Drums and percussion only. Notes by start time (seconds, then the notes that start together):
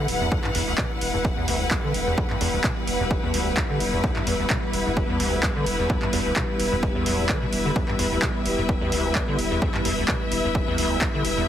0.08 open hi-hat
0.32 kick
0.44 clap
0.55 open hi-hat
0.78 kick, clap
1.01 open hi-hat
1.25 kick
1.48 open hi-hat
1.71 kick, clap
1.94 open hi-hat
2.18 kick
2.30 clap
2.41 open hi-hat
2.64 kick, clap
2.87 open hi-hat
3.11 kick
3.34 open hi-hat
3.57 kick, clap
3.80 open hi-hat
4.04 kick
4.16 clap
4.27 open hi-hat
4.50 kick, clap
4.73 open hi-hat
4.97 kick
5.20 open hi-hat
5.43 kick, clap
5.66 open hi-hat
5.90 kick
6.02 clap
6.13 open hi-hat
6.36 kick, clap
6.60 open hi-hat
6.83 kick
7.06 open hi-hat
7.29 kick, clap
7.53 open hi-hat
7.76 kick
7.88 clap
7.99 open hi-hat
8.22 kick, clap
8.46 open hi-hat
8.69 kick
8.92 open hi-hat
9.15 kick, clap
9.39 open hi-hat
9.62 kick
9.74 clap
9.85 open hi-hat
10.08 kick, clap
10.32 open hi-hat
10.55 kick
10.78 open hi-hat
11.01 kick, clap
11.25 open hi-hat